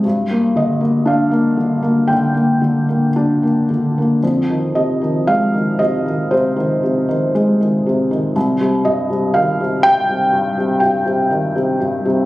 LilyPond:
<<
  \new Staff \with { instrumentName = "Felt piano" } { \time 4/4 \key f \dorian \tempo 4 = 59 r8 ees''8 f''4 g''4. r8 | r8 ees''8 f''8 ees''8 c''4 r4 | r8 ees''8 f''8 g''4 g''4 r8 | }
  \new Staff \with { instrumentName = "Felt piano" } { \clef bass \time 4/4 \key f \dorian g,16 bes16 d16 bes16 d'16 bes16 d16 bes16 d16 bes16 d16 bes16 d'16 bes16 d16 bes16 | f,16 ees16 c16 ees16 aes16 ees16 c16 ees16 c16 ees16 c16 ees16 aes16 ees16 c16 ees16 | c,16 c16 g,16 c16 ees16 c16 g,16 c16 g,16 c16 g,16 c16 ees16 c16 g,16 c16 | }
>>